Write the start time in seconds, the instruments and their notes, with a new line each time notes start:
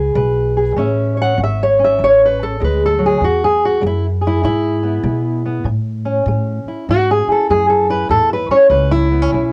Already playing: upright bass C#2, steel-string acoustic guitar B2 G#4 B4
0.16 upright bass B1, steel-string acoustic guitar G#3 B4
0.57 steel-string acoustic guitar G#4
0.76 upright bass A1, steel-string acoustic guitar A3 C#4 C#5 E5
1.17 steel-string acoustic guitar C#5
1.22 steel-string acoustic guitar F#5
1.38 upright bass G#1, steel-string acoustic guitar C#4
1.43 steel-string acoustic guitar E5
1.63 steel-string acoustic guitar C#5
1.79 steel-string acoustic guitar C#4
1.84 steel-string acoustic guitar E5
1.98 upright bass A1, steel-string acoustic guitar E3
2.04 steel-string acoustic guitar C#5
2.25 steel-string acoustic guitar B4
2.43 steel-string acoustic guitar A4
2.60 upright bass D2, steel-string acoustic guitar G#3
2.64 steel-string acoustic guitar B4
2.86 steel-string acoustic guitar A4
2.98 steel-string acoustic guitar F#3
3.06 steel-string acoustic guitar G#4
3.21 upright bass E2, steel-string acoustic guitar E3 F#4
3.44 steel-string acoustic guitar G#4
3.65 steel-string acoustic guitar F#4
3.81 upright bass F#2, steel-string acoustic guitar G#3
3.87 steel-string acoustic guitar E4
4.21 steel-string acoustic guitar G#4
4.27 steel-string acoustic guitar E4
4.43 upright bass G#2, steel-string acoustic guitar B2 E4
4.83 steel-string acoustic guitar B3
5.03 upright bass B2, steel-string acoustic guitar G#3
5.45 steel-string acoustic guitar B3
5.64 upright bass A2, steel-string acoustic guitar A2
6.05 steel-string acoustic guitar C#4
6.26 upright bass A2, steel-string acoustic guitar A3
6.64 steel-string acoustic guitar E4, muted upright bass stroke
6.89 upright bass G#2, steel-string acoustic guitar E3 F#4
7.11 steel-string acoustic guitar G#4
7.27 steel-string acoustic guitar E4, muted upright bass stroke
7.32 steel-string acoustic guitar A4
7.50 upright bass F#2, steel-string acoustic guitar A3 G#4
7.70 steel-string acoustic guitar A4
7.90 steel-string acoustic guitar E4 B4
8.09 upright bass E2, steel-string acoustic guitar A2 A4
8.33 steel-string acoustic guitar B4
8.48 steel-string acoustic guitar C#4 C#5, muted upright bass stroke
8.70 upright bass C#2, steel-string acoustic guitar A3 B4
8.91 steel-string acoustic guitar E4
9.12 steel-string acoustic guitar B3
9.22 steel-string acoustic guitar C#4
9.33 upright bass B1, steel-string acoustic guitar E3 C#4